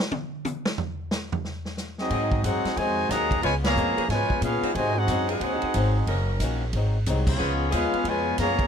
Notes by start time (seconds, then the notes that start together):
0.12 high tom
0.45 hi-hat pedal, high tom
0.65 snare
0.78 floor tom
1.11 snare, hi-hat pedal
1.32 floor tom
1.45 snare
1.65 snare
1.77 snare, hi-hat pedal
1.98 F#3 C4 D#4 F#4 G#4 D#5, snare
2.10 G#2 F#3 C4 D#4 G#4, ride
2.32 kick
2.43 F#2 G#2 F#3 C4 D#4 F#4 G#4 C5 F#5, hi-hat pedal, ride
2.64 muted upright bass stroke, snare, ride
2.76 F2 G#2 C3 D#3 F#3 G#3 C4 D#4 F#4 C5 D#5 G#5, ride
3.09 D#2 G#2 D#3 F#3 A#3 C4 D#4 G#4 D#5 F#5 A#5, snare, hi-hat pedal, ride
3.31 kick, ride
3.42 C#2 B2 C#3 F3 G#3 B3 F4 B4 C#5 G#5, ride
3.47 F4
3.63 B2 F3 A#3 G#4 C#5 F5 A#5, snare, ride
3.76 F2 C#3 G#3 B3 F4, hi-hat pedal
3.97 F3 B3 C#4 G#4, muted upright bass stroke, ride
4.07 G#2 B2 C#3 F3 G#3 F4 B4 C#5 G#5, snare, ride
4.12 B3 F4
4.29 muted upright bass stroke, kick
4.40 A#2 C#3 G#3 B3 C#4 F4 G#4 B4 F5, hi-hat pedal, ride
4.45 F4
4.62 F#3 C4 D#4 F#4, muted upright bass stroke, ride
4.73 G#2 C3 D#3 F#3 G#3 F#4 C5 D#5 G#5, ride
4.78 C4 D#4
4.94 C4 D#4 F#4 G#4 C5 F#5
5.07 F#2 G#2 F#3 C4 D#4, hi-hat pedal, ride
5.28 F#3 C4 D#4 F#4 G#4 C5 F#5, ride
5.40 D#2 G#2 F#3, ride
5.44 C4 D#4
5.62 muted upright bass stroke, ride
5.74 G#1 G#2 F#3 C4, hi-hat pedal, ride
5.78 D#4
6.07 F#1 D#3 F#3 A#3 C#4 D#4 F#4 A#4, ride
6.40 A#1 D#3 A#3 C#4, hi-hat pedal, ride
6.44 F#4
6.73 G#1 G#2 F#3 C4, ride
6.77 D#4
7.06 C2 G#2 F#3 C4 D#4, hi-hat pedal, ride
7.27 F3 G#3 B3 C#4 F4 G#4 C#5, kick, crash
7.37 C#2 C#3 F3 G#3 B3 C#4 G#4
7.42 B3 F4
7.71 D#2 C#3 F3 G#3 B3 C#4 F4 G#4 B4 F5, hi-hat pedal, ride
7.75 B3 F4
7.93 muted upright bass stroke, ride
8.04 F2 B2 C#3 F3 G#3 B3 B4 G#5, ride
8.09 F4 C#5
8.38 F#2 B2 C#3 F3 G#3 A#3 B3 F4 G#4 C#5 F5 A#5, snare, hi-hat pedal, ride
8.59 kick, ride